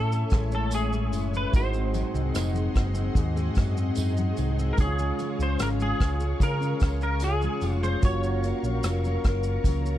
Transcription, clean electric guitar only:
Already playing: A4
0.55 A4
0.75 G#4
1.37 B4
1.56 C5
2.36 A#4
4.73 A#4
4.80 G#4
5.43 C5
5.62 A#4
5.82 G#4
6.43 A#4
7.03 A#4
7.24 G#4
7.71 F#4
7.83 C5
8.05 C#5

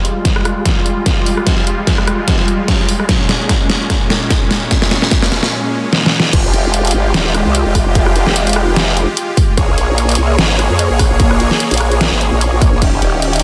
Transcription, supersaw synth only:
Already playing: G3 G#3 F4
3.09 A#2 C#4
6.33 G#3 F4 G4
9.58 A#3 G#4 C#5
12.82 D#3 C#4 G4

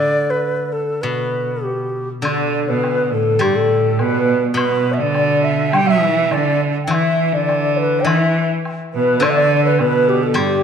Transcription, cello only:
2.24 D3
2.68 B2
3.12 A2
3.40 G2
3.55 A2
4.00 B2
4.56 B2
5.00 D3
5.72 G3
5.87 E3
6.31 D3
6.91 E3
7.32 D3
8.06 E3
8.95 B2
9.23 D3
9.79 B2
10.36 G2

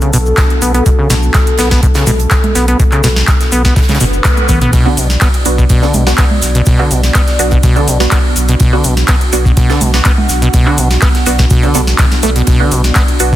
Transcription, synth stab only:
4.86 B3 D4 F#4
5.46 B3 D4 F#4
5.83 B3 D4 A4
6.07 B3 D4 F#4
6.79 B3 D4 F#4
7.39 B3 D4 F#4
7.76 B3 D4 A4
8.00 B3 D4 F#4
8.73 B3 D4 F#4
9.33 B3 D4 F#4
9.70 B3 D4 A4
9.94 B3 D4 F#4
10.66 B3 D4 F#4
11.26 B3 D4 F#4
11.63 B3 D4 A4
11.75 B3 D4 A4
12.23 B3 D4 A4
12.60 B3 D4 F#4
13.20 B3 D4 F#4

